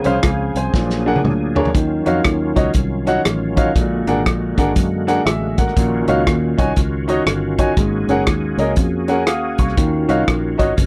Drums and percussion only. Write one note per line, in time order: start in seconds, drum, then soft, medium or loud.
0.04 closed hi-hat medium
0.23 kick medium
0.23 cross-stick loud
0.23 closed hi-hat medium
0.55 closed hi-hat medium
0.74 kick loud
0.74 snare soft
0.90 snare soft
1.16 high tom medium
1.25 mid tom medium
1.56 floor tom medium
1.65 floor tom medium
1.75 kick loud
1.75 closed hi-hat medium
2.06 closed hi-hat medium
2.24 kick medium
2.24 cross-stick loud
2.24 closed hi-hat medium
2.56 kick medium
2.56 closed hi-hat medium
2.73 kick medium
2.73 closed hi-hat medium
3.07 cross-stick soft
3.07 closed hi-hat medium
3.25 cross-stick loud
3.25 closed hi-hat medium
3.57 kick medium
3.57 closed hi-hat medium
3.76 kick loud
3.76 closed hi-hat medium
4.07 closed hi-hat medium
4.26 kick medium
4.26 cross-stick loud
4.26 closed hi-hat medium
4.58 kick medium
4.58 closed hi-hat medium
4.76 kick medium
4.76 closed hi-hat medium
5.08 cross-stick soft
5.08 closed hi-hat medium
5.27 cross-stick loud
5.27 closed hi-hat medium
5.58 kick medium
5.58 closed hi-hat medium
5.68 cross-stick soft
5.76 kick loud
5.76 closed hi-hat medium
6.07 closed hi-hat medium
6.27 kick medium
6.27 cross-stick loud
6.27 closed hi-hat medium
6.58 kick medium
6.58 closed hi-hat medium
6.76 kick medium
6.76 closed hi-hat medium
7.08 cross-stick soft
7.08 closed hi-hat medium
7.27 cross-stick loud
7.27 closed hi-hat medium
7.58 kick medium
7.58 closed hi-hat medium
7.77 kick loud
7.77 closed hi-hat medium
8.09 closed hi-hat medium
8.27 kick medium
8.27 cross-stick loud
8.27 closed hi-hat medium
8.58 closed hi-hat medium
8.76 kick loud
8.76 closed hi-hat medium
9.08 closed hi-hat medium
9.27 cross-stick medium
9.27 closed hi-hat medium
9.58 kick medium
9.58 closed hi-hat medium
9.69 cross-stick soft
9.77 kick loud
9.77 closed hi-hat medium
10.09 closed hi-hat medium
10.28 kick medium
10.28 cross-stick loud
10.28 closed hi-hat medium
10.59 kick medium
10.59 closed hi-hat medium
10.77 kick loud
10.77 closed hi-hat medium